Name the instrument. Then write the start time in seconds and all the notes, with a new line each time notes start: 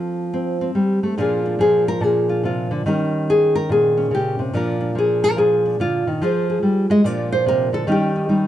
nylon-string guitar
Already playing: F3 C4 A4
0.34 C4
0.61 C4
0.75 G3
1.03 A3
1.18 A#2 F3 D4 F4 G#4
1.46 D4
1.59 F3 G#4
1.88 A#4
2.01 A#2 G#4
2.29 F4
2.43 C3 F4
2.71 D3
2.86 D#3 G3 C#4 A#4
3.30 G#4
3.55 A#4
3.69 A#2 G#4
3.97 C#4
4.11 C#3 G4
4.39 C3
4.53 A#2 F3 D4 F4 A#4
4.81 D4
4.95 F3 G#4
5.24 A#4
5.36 F3 G#4
5.66 D4
5.80 D3 F4
6.07 D#3
6.22 F3 F4 G#4 C5
6.50 G#4
6.63 G3
6.90 G#3 D#5
7.04 A#2 F3 D4 F4 D5
7.32 C5
7.46 C3 A#4
7.73 D3 A4
7.87 D#3 G3 C#4 D#4
7.92 G4
8.16 C#4
8.29 G3 D#4